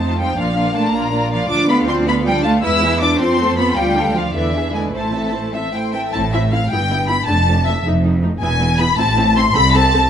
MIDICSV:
0, 0, Header, 1, 6, 480
1, 0, Start_track
1, 0, Key_signature, 0, "minor"
1, 0, Tempo, 375469
1, 493, Time_signature, 6, 3, 24, 8
1, 4816, Tempo, 393185
1, 8176, Tempo, 378310
1, 12718, End_track
2, 0, Start_track
2, 0, Title_t, "Violin section"
2, 0, Program_c, 0, 48
2, 0, Note_on_c, 0, 81, 61
2, 255, Note_on_c, 0, 79, 68
2, 257, Note_off_c, 0, 81, 0
2, 482, Note_on_c, 0, 77, 66
2, 489, Note_off_c, 0, 79, 0
2, 963, Note_on_c, 0, 81, 70
2, 964, Note_off_c, 0, 77, 0
2, 1202, Note_on_c, 0, 82, 64
2, 1205, Note_off_c, 0, 81, 0
2, 1680, Note_off_c, 0, 82, 0
2, 1684, Note_on_c, 0, 77, 66
2, 1891, Note_on_c, 0, 86, 82
2, 1917, Note_off_c, 0, 77, 0
2, 2140, Note_off_c, 0, 86, 0
2, 2165, Note_on_c, 0, 83, 75
2, 2260, Note_off_c, 0, 83, 0
2, 2396, Note_on_c, 0, 84, 81
2, 2494, Note_off_c, 0, 84, 0
2, 2651, Note_on_c, 0, 83, 87
2, 2747, Note_off_c, 0, 83, 0
2, 2890, Note_on_c, 0, 79, 78
2, 3114, Note_on_c, 0, 81, 79
2, 3126, Note_off_c, 0, 79, 0
2, 3213, Note_off_c, 0, 81, 0
2, 3365, Note_on_c, 0, 88, 87
2, 3832, Note_on_c, 0, 86, 81
2, 3839, Note_off_c, 0, 88, 0
2, 4077, Note_off_c, 0, 86, 0
2, 4077, Note_on_c, 0, 84, 83
2, 4555, Note_off_c, 0, 84, 0
2, 4570, Note_on_c, 0, 83, 82
2, 4798, Note_on_c, 0, 79, 76
2, 4809, Note_off_c, 0, 83, 0
2, 5277, Note_off_c, 0, 79, 0
2, 5289, Note_on_c, 0, 77, 62
2, 5515, Note_on_c, 0, 76, 65
2, 5524, Note_off_c, 0, 77, 0
2, 5997, Note_off_c, 0, 76, 0
2, 6021, Note_on_c, 0, 80, 56
2, 6115, Note_off_c, 0, 80, 0
2, 6253, Note_on_c, 0, 81, 57
2, 6967, Note_off_c, 0, 81, 0
2, 6983, Note_on_c, 0, 76, 60
2, 7206, Note_off_c, 0, 76, 0
2, 7216, Note_on_c, 0, 79, 60
2, 7432, Note_off_c, 0, 79, 0
2, 7447, Note_on_c, 0, 79, 61
2, 7544, Note_off_c, 0, 79, 0
2, 7698, Note_on_c, 0, 81, 72
2, 7794, Note_off_c, 0, 81, 0
2, 7944, Note_on_c, 0, 76, 70
2, 8038, Note_off_c, 0, 76, 0
2, 8183, Note_on_c, 0, 77, 72
2, 8416, Note_on_c, 0, 79, 84
2, 8418, Note_off_c, 0, 77, 0
2, 8892, Note_off_c, 0, 79, 0
2, 8898, Note_on_c, 0, 83, 84
2, 9133, Note_on_c, 0, 81, 82
2, 9138, Note_off_c, 0, 83, 0
2, 9614, Note_off_c, 0, 81, 0
2, 9616, Note_on_c, 0, 76, 70
2, 9859, Note_off_c, 0, 76, 0
2, 10567, Note_on_c, 0, 80, 91
2, 11022, Note_off_c, 0, 80, 0
2, 11052, Note_on_c, 0, 83, 94
2, 11295, Note_on_c, 0, 81, 96
2, 11297, Note_off_c, 0, 83, 0
2, 11770, Note_off_c, 0, 81, 0
2, 11786, Note_on_c, 0, 84, 101
2, 12024, Note_on_c, 0, 83, 107
2, 12025, Note_off_c, 0, 84, 0
2, 12259, Note_on_c, 0, 81, 102
2, 12262, Note_off_c, 0, 83, 0
2, 12718, Note_off_c, 0, 81, 0
2, 12718, End_track
3, 0, Start_track
3, 0, Title_t, "Violin section"
3, 0, Program_c, 1, 48
3, 26, Note_on_c, 1, 72, 42
3, 36, Note_on_c, 1, 65, 43
3, 252, Note_off_c, 1, 72, 0
3, 255, Note_off_c, 1, 65, 0
3, 267, Note_on_c, 1, 72, 43
3, 270, Note_on_c, 1, 65, 42
3, 480, Note_off_c, 1, 65, 0
3, 495, Note_off_c, 1, 72, 0
3, 495, Note_on_c, 1, 65, 50
3, 495, Note_on_c, 1, 74, 48
3, 715, Note_off_c, 1, 74, 0
3, 721, Note_off_c, 1, 65, 0
3, 731, Note_on_c, 1, 74, 42
3, 736, Note_on_c, 1, 65, 46
3, 965, Note_off_c, 1, 74, 0
3, 968, Note_off_c, 1, 65, 0
3, 981, Note_on_c, 1, 65, 48
3, 981, Note_on_c, 1, 74, 45
3, 1210, Note_off_c, 1, 65, 0
3, 1210, Note_off_c, 1, 74, 0
3, 1233, Note_on_c, 1, 74, 46
3, 1238, Note_on_c, 1, 65, 52
3, 1432, Note_off_c, 1, 65, 0
3, 1435, Note_off_c, 1, 74, 0
3, 1448, Note_on_c, 1, 65, 50
3, 1450, Note_on_c, 1, 74, 51
3, 1679, Note_off_c, 1, 65, 0
3, 1680, Note_off_c, 1, 74, 0
3, 1694, Note_on_c, 1, 74, 52
3, 1701, Note_on_c, 1, 65, 52
3, 1922, Note_off_c, 1, 74, 0
3, 1926, Note_off_c, 1, 65, 0
3, 1938, Note_on_c, 1, 74, 55
3, 1939, Note_on_c, 1, 62, 52
3, 2153, Note_off_c, 1, 62, 0
3, 2153, Note_off_c, 1, 74, 0
3, 2172, Note_on_c, 1, 65, 52
3, 2178, Note_on_c, 1, 77, 50
3, 2404, Note_on_c, 1, 74, 50
3, 2407, Note_off_c, 1, 65, 0
3, 2407, Note_on_c, 1, 62, 52
3, 2409, Note_off_c, 1, 77, 0
3, 2645, Note_off_c, 1, 74, 0
3, 2646, Note_off_c, 1, 62, 0
3, 2654, Note_on_c, 1, 77, 55
3, 2665, Note_on_c, 1, 65, 47
3, 2892, Note_off_c, 1, 77, 0
3, 2892, Note_on_c, 1, 74, 54
3, 2894, Note_on_c, 1, 62, 54
3, 2897, Note_off_c, 1, 65, 0
3, 3114, Note_off_c, 1, 74, 0
3, 3115, Note_off_c, 1, 62, 0
3, 3123, Note_on_c, 1, 77, 53
3, 3125, Note_on_c, 1, 65, 55
3, 3366, Note_off_c, 1, 77, 0
3, 3367, Note_off_c, 1, 65, 0
3, 3372, Note_on_c, 1, 71, 59
3, 3377, Note_off_c, 1, 71, 0
3, 3377, Note_on_c, 1, 71, 55
3, 3597, Note_off_c, 1, 71, 0
3, 3604, Note_on_c, 1, 68, 50
3, 3607, Note_on_c, 1, 76, 54
3, 3848, Note_off_c, 1, 68, 0
3, 3849, Note_off_c, 1, 76, 0
3, 3858, Note_on_c, 1, 71, 51
3, 3861, Note_off_c, 1, 71, 0
3, 3861, Note_on_c, 1, 71, 55
3, 4074, Note_on_c, 1, 72, 51
3, 4075, Note_on_c, 1, 69, 50
3, 4096, Note_off_c, 1, 71, 0
3, 4305, Note_off_c, 1, 72, 0
3, 4306, Note_off_c, 1, 69, 0
3, 4321, Note_on_c, 1, 69, 53
3, 4325, Note_on_c, 1, 72, 56
3, 4556, Note_off_c, 1, 69, 0
3, 4558, Note_off_c, 1, 72, 0
3, 4571, Note_on_c, 1, 69, 53
3, 4573, Note_on_c, 1, 72, 54
3, 4815, Note_off_c, 1, 69, 0
3, 4816, Note_off_c, 1, 72, 0
3, 4824, Note_on_c, 1, 65, 54
3, 4829, Note_on_c, 1, 74, 54
3, 5038, Note_off_c, 1, 65, 0
3, 5041, Note_off_c, 1, 74, 0
3, 5067, Note_on_c, 1, 77, 47
3, 5074, Note_on_c, 1, 69, 50
3, 5294, Note_off_c, 1, 77, 0
3, 5294, Note_on_c, 1, 74, 44
3, 5295, Note_on_c, 1, 65, 46
3, 5297, Note_off_c, 1, 69, 0
3, 5521, Note_off_c, 1, 74, 0
3, 5527, Note_off_c, 1, 65, 0
3, 5535, Note_on_c, 1, 74, 46
3, 5536, Note_on_c, 1, 71, 43
3, 5750, Note_off_c, 1, 74, 0
3, 5751, Note_off_c, 1, 71, 0
3, 5774, Note_on_c, 1, 68, 45
3, 5781, Note_on_c, 1, 76, 43
3, 6001, Note_on_c, 1, 74, 43
3, 6008, Note_off_c, 1, 68, 0
3, 6008, Note_on_c, 1, 71, 41
3, 6011, Note_off_c, 1, 76, 0
3, 6245, Note_off_c, 1, 74, 0
3, 6246, Note_on_c, 1, 72, 42
3, 6249, Note_off_c, 1, 71, 0
3, 6251, Note_off_c, 1, 72, 0
3, 6251, Note_on_c, 1, 72, 43
3, 6477, Note_off_c, 1, 72, 0
3, 6491, Note_on_c, 1, 76, 38
3, 6497, Note_on_c, 1, 69, 39
3, 6730, Note_on_c, 1, 72, 36
3, 6732, Note_off_c, 1, 72, 0
3, 6732, Note_on_c, 1, 72, 36
3, 6735, Note_off_c, 1, 76, 0
3, 6738, Note_off_c, 1, 69, 0
3, 6976, Note_off_c, 1, 72, 0
3, 6977, Note_on_c, 1, 76, 50
3, 6979, Note_on_c, 1, 69, 37
3, 7074, Note_off_c, 1, 76, 0
3, 7218, Note_on_c, 1, 72, 34
3, 7220, Note_off_c, 1, 69, 0
3, 7224, Note_on_c, 1, 79, 48
3, 7228, Note_off_c, 1, 72, 0
3, 7228, Note_on_c, 1, 72, 38
3, 7321, Note_off_c, 1, 79, 0
3, 7451, Note_off_c, 1, 72, 0
3, 7461, Note_on_c, 1, 76, 46
3, 7466, Note_on_c, 1, 69, 45
3, 7466, Note_on_c, 1, 79, 54
3, 7702, Note_off_c, 1, 79, 0
3, 7704, Note_off_c, 1, 76, 0
3, 7704, Note_on_c, 1, 81, 64
3, 7706, Note_off_c, 1, 69, 0
3, 7941, Note_off_c, 1, 81, 0
3, 7956, Note_on_c, 1, 76, 61
3, 8184, Note_off_c, 1, 76, 0
3, 8192, Note_on_c, 1, 77, 66
3, 8428, Note_off_c, 1, 77, 0
3, 8437, Note_on_c, 1, 79, 67
3, 8897, Note_on_c, 1, 83, 69
3, 8903, Note_off_c, 1, 79, 0
3, 9140, Note_on_c, 1, 81, 75
3, 9142, Note_off_c, 1, 83, 0
3, 9617, Note_off_c, 1, 81, 0
3, 9630, Note_on_c, 1, 76, 63
3, 9871, Note_off_c, 1, 76, 0
3, 10583, Note_on_c, 1, 80, 86
3, 11030, Note_off_c, 1, 80, 0
3, 11057, Note_on_c, 1, 83, 81
3, 11300, Note_off_c, 1, 83, 0
3, 11302, Note_on_c, 1, 81, 77
3, 11783, Note_off_c, 1, 81, 0
3, 11799, Note_on_c, 1, 84, 86
3, 11892, Note_off_c, 1, 84, 0
3, 12025, Note_on_c, 1, 83, 103
3, 12258, Note_off_c, 1, 83, 0
3, 12268, Note_on_c, 1, 81, 90
3, 12718, Note_off_c, 1, 81, 0
3, 12718, End_track
4, 0, Start_track
4, 0, Title_t, "Viola section"
4, 0, Program_c, 2, 48
4, 1, Note_on_c, 2, 60, 39
4, 1, Note_on_c, 2, 63, 38
4, 230, Note_off_c, 2, 63, 0
4, 236, Note_off_c, 2, 60, 0
4, 245, Note_on_c, 2, 63, 44
4, 252, Note_on_c, 2, 60, 48
4, 476, Note_on_c, 2, 62, 45
4, 478, Note_on_c, 2, 58, 50
4, 484, Note_off_c, 2, 63, 0
4, 487, Note_off_c, 2, 60, 0
4, 694, Note_off_c, 2, 58, 0
4, 695, Note_off_c, 2, 62, 0
4, 709, Note_on_c, 2, 58, 46
4, 710, Note_on_c, 2, 62, 46
4, 930, Note_off_c, 2, 58, 0
4, 932, Note_off_c, 2, 62, 0
4, 946, Note_on_c, 2, 58, 45
4, 948, Note_on_c, 2, 62, 48
4, 1172, Note_off_c, 2, 62, 0
4, 1177, Note_off_c, 2, 58, 0
4, 1188, Note_on_c, 2, 62, 51
4, 1192, Note_on_c, 2, 58, 50
4, 1414, Note_off_c, 2, 62, 0
4, 1417, Note_off_c, 2, 58, 0
4, 1429, Note_on_c, 2, 62, 43
4, 1433, Note_on_c, 2, 58, 48
4, 1650, Note_off_c, 2, 58, 0
4, 1653, Note_off_c, 2, 62, 0
4, 1666, Note_on_c, 2, 58, 51
4, 1668, Note_on_c, 2, 62, 53
4, 1905, Note_on_c, 2, 53, 49
4, 1908, Note_off_c, 2, 58, 0
4, 1909, Note_off_c, 2, 62, 0
4, 1911, Note_on_c, 2, 65, 51
4, 2135, Note_off_c, 2, 53, 0
4, 2137, Note_on_c, 2, 62, 49
4, 2138, Note_off_c, 2, 65, 0
4, 2139, Note_on_c, 2, 57, 48
4, 2387, Note_on_c, 2, 53, 50
4, 2387, Note_on_c, 2, 65, 51
4, 2389, Note_off_c, 2, 62, 0
4, 2390, Note_off_c, 2, 57, 0
4, 2623, Note_on_c, 2, 57, 55
4, 2625, Note_on_c, 2, 62, 51
4, 2636, Note_off_c, 2, 53, 0
4, 2636, Note_off_c, 2, 65, 0
4, 2871, Note_on_c, 2, 65, 50
4, 2872, Note_on_c, 2, 53, 49
4, 2876, Note_off_c, 2, 57, 0
4, 2877, Note_off_c, 2, 62, 0
4, 3103, Note_off_c, 2, 65, 0
4, 3104, Note_off_c, 2, 53, 0
4, 3111, Note_on_c, 2, 62, 56
4, 3112, Note_on_c, 2, 57, 55
4, 3354, Note_on_c, 2, 56, 56
4, 3355, Note_on_c, 2, 64, 55
4, 3360, Note_off_c, 2, 62, 0
4, 3361, Note_off_c, 2, 57, 0
4, 3585, Note_off_c, 2, 56, 0
4, 3585, Note_off_c, 2, 64, 0
4, 3610, Note_on_c, 2, 52, 51
4, 3614, Note_on_c, 2, 59, 53
4, 3846, Note_on_c, 2, 56, 52
4, 3851, Note_off_c, 2, 52, 0
4, 3852, Note_on_c, 2, 64, 53
4, 3853, Note_off_c, 2, 59, 0
4, 4087, Note_on_c, 2, 65, 52
4, 4089, Note_off_c, 2, 56, 0
4, 4090, Note_on_c, 2, 60, 53
4, 4092, Note_off_c, 2, 64, 0
4, 4312, Note_off_c, 2, 65, 0
4, 4314, Note_off_c, 2, 60, 0
4, 4329, Note_on_c, 2, 60, 48
4, 4333, Note_on_c, 2, 57, 47
4, 4558, Note_off_c, 2, 60, 0
4, 4573, Note_off_c, 2, 57, 0
4, 4573, Note_on_c, 2, 60, 51
4, 4576, Note_on_c, 2, 65, 57
4, 4797, Note_off_c, 2, 65, 0
4, 4813, Note_on_c, 2, 65, 53
4, 4816, Note_off_c, 2, 60, 0
4, 4821, Note_on_c, 2, 53, 49
4, 5032, Note_off_c, 2, 65, 0
4, 5036, Note_off_c, 2, 53, 0
4, 5052, Note_on_c, 2, 57, 50
4, 5056, Note_on_c, 2, 62, 47
4, 5284, Note_on_c, 2, 65, 46
4, 5286, Note_on_c, 2, 53, 49
4, 5287, Note_off_c, 2, 57, 0
4, 5289, Note_off_c, 2, 62, 0
4, 5520, Note_on_c, 2, 50, 48
4, 5521, Note_off_c, 2, 65, 0
4, 5522, Note_off_c, 2, 53, 0
4, 5523, Note_on_c, 2, 64, 43
4, 5742, Note_off_c, 2, 50, 0
4, 5743, Note_off_c, 2, 64, 0
4, 5753, Note_on_c, 2, 52, 42
4, 5758, Note_on_c, 2, 62, 37
4, 5989, Note_on_c, 2, 64, 43
4, 5995, Note_on_c, 2, 50, 45
4, 5997, Note_off_c, 2, 52, 0
4, 6000, Note_off_c, 2, 62, 0
4, 6225, Note_off_c, 2, 64, 0
4, 6235, Note_on_c, 2, 57, 40
4, 6239, Note_on_c, 2, 64, 39
4, 6242, Note_off_c, 2, 50, 0
4, 6468, Note_off_c, 2, 57, 0
4, 6471, Note_off_c, 2, 64, 0
4, 6482, Note_on_c, 2, 52, 36
4, 6485, Note_on_c, 2, 60, 37
4, 6731, Note_off_c, 2, 52, 0
4, 6733, Note_off_c, 2, 60, 0
4, 6733, Note_on_c, 2, 64, 36
4, 6735, Note_on_c, 2, 57, 38
4, 6977, Note_off_c, 2, 64, 0
4, 6977, Note_on_c, 2, 52, 39
4, 6977, Note_on_c, 2, 60, 38
4, 6978, Note_off_c, 2, 57, 0
4, 7218, Note_on_c, 2, 57, 35
4, 7219, Note_off_c, 2, 60, 0
4, 7220, Note_off_c, 2, 52, 0
4, 7220, Note_on_c, 2, 64, 32
4, 7446, Note_off_c, 2, 57, 0
4, 7447, Note_off_c, 2, 64, 0
4, 7463, Note_on_c, 2, 60, 36
4, 7465, Note_on_c, 2, 52, 37
4, 7694, Note_off_c, 2, 60, 0
4, 7706, Note_off_c, 2, 52, 0
4, 7708, Note_on_c, 2, 60, 50
4, 7713, Note_on_c, 2, 64, 55
4, 7802, Note_off_c, 2, 60, 0
4, 7806, Note_off_c, 2, 64, 0
4, 7953, Note_on_c, 2, 64, 50
4, 7956, Note_on_c, 2, 60, 49
4, 8045, Note_off_c, 2, 64, 0
4, 8047, Note_off_c, 2, 60, 0
4, 8179, Note_on_c, 2, 60, 51
4, 8180, Note_on_c, 2, 64, 51
4, 8276, Note_off_c, 2, 60, 0
4, 8277, Note_off_c, 2, 64, 0
4, 8434, Note_on_c, 2, 64, 55
4, 8438, Note_on_c, 2, 59, 54
4, 8528, Note_off_c, 2, 64, 0
4, 8531, Note_off_c, 2, 59, 0
4, 8659, Note_on_c, 2, 64, 46
4, 8666, Note_on_c, 2, 59, 49
4, 8757, Note_off_c, 2, 64, 0
4, 8762, Note_off_c, 2, 59, 0
4, 8907, Note_on_c, 2, 59, 52
4, 8907, Note_on_c, 2, 64, 57
4, 9003, Note_off_c, 2, 59, 0
4, 9003, Note_off_c, 2, 64, 0
4, 9137, Note_on_c, 2, 57, 57
4, 9142, Note_on_c, 2, 62, 53
4, 9236, Note_off_c, 2, 57, 0
4, 9240, Note_off_c, 2, 62, 0
4, 9395, Note_on_c, 2, 57, 55
4, 9397, Note_on_c, 2, 62, 49
4, 9490, Note_off_c, 2, 57, 0
4, 9492, Note_off_c, 2, 62, 0
4, 9634, Note_on_c, 2, 62, 56
4, 9639, Note_on_c, 2, 57, 54
4, 9729, Note_off_c, 2, 62, 0
4, 9733, Note_off_c, 2, 57, 0
4, 9870, Note_on_c, 2, 57, 57
4, 9875, Note_on_c, 2, 63, 56
4, 9966, Note_off_c, 2, 57, 0
4, 9970, Note_off_c, 2, 63, 0
4, 10106, Note_on_c, 2, 63, 52
4, 10110, Note_on_c, 2, 57, 51
4, 10202, Note_off_c, 2, 63, 0
4, 10205, Note_off_c, 2, 57, 0
4, 10336, Note_on_c, 2, 63, 58
4, 10337, Note_on_c, 2, 57, 58
4, 10434, Note_off_c, 2, 63, 0
4, 10435, Note_off_c, 2, 57, 0
4, 10580, Note_on_c, 2, 59, 62
4, 10583, Note_on_c, 2, 64, 60
4, 10677, Note_off_c, 2, 59, 0
4, 10680, Note_off_c, 2, 64, 0
4, 10809, Note_on_c, 2, 64, 61
4, 10812, Note_on_c, 2, 59, 62
4, 10908, Note_off_c, 2, 64, 0
4, 10911, Note_off_c, 2, 59, 0
4, 11043, Note_on_c, 2, 59, 61
4, 11052, Note_on_c, 2, 64, 55
4, 11143, Note_off_c, 2, 59, 0
4, 11150, Note_off_c, 2, 64, 0
4, 11288, Note_on_c, 2, 60, 69
4, 11290, Note_on_c, 2, 64, 65
4, 11387, Note_off_c, 2, 60, 0
4, 11389, Note_off_c, 2, 64, 0
4, 11530, Note_on_c, 2, 60, 60
4, 11534, Note_on_c, 2, 64, 57
4, 11629, Note_off_c, 2, 60, 0
4, 11632, Note_off_c, 2, 64, 0
4, 11767, Note_on_c, 2, 60, 67
4, 11770, Note_on_c, 2, 64, 69
4, 11866, Note_off_c, 2, 60, 0
4, 11868, Note_off_c, 2, 64, 0
4, 12014, Note_on_c, 2, 69, 62
4, 12015, Note_on_c, 2, 60, 67
4, 12111, Note_off_c, 2, 69, 0
4, 12112, Note_off_c, 2, 60, 0
4, 12260, Note_on_c, 2, 69, 60
4, 12261, Note_on_c, 2, 60, 65
4, 12355, Note_off_c, 2, 69, 0
4, 12356, Note_off_c, 2, 60, 0
4, 12499, Note_on_c, 2, 69, 63
4, 12502, Note_on_c, 2, 60, 65
4, 12594, Note_off_c, 2, 69, 0
4, 12596, Note_off_c, 2, 60, 0
4, 12718, End_track
5, 0, Start_track
5, 0, Title_t, "Cello section"
5, 0, Program_c, 3, 48
5, 0, Note_on_c, 3, 57, 50
5, 240, Note_off_c, 3, 57, 0
5, 252, Note_on_c, 3, 55, 56
5, 487, Note_on_c, 3, 53, 54
5, 492, Note_off_c, 3, 55, 0
5, 957, Note_off_c, 3, 53, 0
5, 967, Note_on_c, 3, 57, 60
5, 1203, Note_off_c, 3, 57, 0
5, 1210, Note_on_c, 3, 58, 53
5, 1684, Note_off_c, 3, 58, 0
5, 1684, Note_on_c, 3, 53, 67
5, 1779, Note_off_c, 3, 53, 0
5, 1912, Note_on_c, 3, 62, 79
5, 2148, Note_on_c, 3, 59, 67
5, 2151, Note_off_c, 3, 62, 0
5, 2389, Note_off_c, 3, 59, 0
5, 2394, Note_on_c, 3, 60, 68
5, 2639, Note_off_c, 3, 60, 0
5, 2640, Note_on_c, 3, 59, 67
5, 2879, Note_on_c, 3, 55, 67
5, 2885, Note_off_c, 3, 59, 0
5, 3123, Note_on_c, 3, 57, 74
5, 3125, Note_off_c, 3, 55, 0
5, 3361, Note_off_c, 3, 57, 0
5, 3361, Note_on_c, 3, 64, 72
5, 3837, Note_off_c, 3, 64, 0
5, 3841, Note_on_c, 3, 62, 71
5, 4066, Note_on_c, 3, 60, 69
5, 4086, Note_off_c, 3, 62, 0
5, 4556, Note_on_c, 3, 59, 69
5, 4559, Note_off_c, 3, 60, 0
5, 4802, Note_off_c, 3, 59, 0
5, 4802, Note_on_c, 3, 55, 74
5, 5267, Note_on_c, 3, 53, 61
5, 5270, Note_off_c, 3, 55, 0
5, 5513, Note_off_c, 3, 53, 0
5, 5513, Note_on_c, 3, 52, 52
5, 5986, Note_off_c, 3, 52, 0
5, 5994, Note_on_c, 3, 56, 56
5, 6235, Note_on_c, 3, 57, 51
5, 6237, Note_off_c, 3, 56, 0
5, 6958, Note_off_c, 3, 57, 0
5, 7707, Note_on_c, 3, 45, 69
5, 8335, Note_off_c, 3, 45, 0
5, 8423, Note_on_c, 3, 43, 58
5, 9061, Note_off_c, 3, 43, 0
5, 9140, Note_on_c, 3, 41, 72
5, 9782, Note_off_c, 3, 41, 0
5, 9871, Note_on_c, 3, 41, 66
5, 10503, Note_off_c, 3, 41, 0
5, 10586, Note_on_c, 3, 40, 70
5, 11219, Note_off_c, 3, 40, 0
5, 11298, Note_on_c, 3, 45, 69
5, 11936, Note_off_c, 3, 45, 0
5, 12018, Note_on_c, 3, 36, 81
5, 12649, Note_off_c, 3, 36, 0
5, 12718, End_track
6, 0, Start_track
6, 0, Title_t, "Double bass section"
6, 0, Program_c, 4, 48
6, 0, Note_on_c, 4, 41, 53
6, 410, Note_off_c, 4, 41, 0
6, 499, Note_on_c, 4, 34, 53
6, 1127, Note_off_c, 4, 34, 0
6, 1206, Note_on_c, 4, 34, 63
6, 1835, Note_off_c, 4, 34, 0
6, 1906, Note_on_c, 4, 38, 64
6, 3310, Note_off_c, 4, 38, 0
6, 3358, Note_on_c, 4, 40, 59
6, 4080, Note_on_c, 4, 41, 64
6, 4086, Note_off_c, 4, 40, 0
6, 4808, Note_on_c, 4, 38, 61
6, 4810, Note_off_c, 4, 41, 0
6, 5504, Note_off_c, 4, 38, 0
6, 5522, Note_on_c, 4, 40, 53
6, 6231, Note_off_c, 4, 40, 0
6, 6239, Note_on_c, 4, 33, 44
6, 7461, Note_off_c, 4, 33, 0
6, 7714, Note_on_c, 4, 33, 65
6, 8339, Note_off_c, 4, 33, 0
6, 8437, Note_on_c, 4, 31, 61
6, 9068, Note_off_c, 4, 31, 0
6, 9148, Note_on_c, 4, 29, 72
6, 9786, Note_off_c, 4, 29, 0
6, 9871, Note_on_c, 4, 29, 65
6, 10503, Note_off_c, 4, 29, 0
6, 10584, Note_on_c, 4, 28, 74
6, 11218, Note_off_c, 4, 28, 0
6, 11298, Note_on_c, 4, 33, 74
6, 11936, Note_off_c, 4, 33, 0
6, 12028, Note_on_c, 4, 36, 82
6, 12654, Note_off_c, 4, 36, 0
6, 12718, End_track
0, 0, End_of_file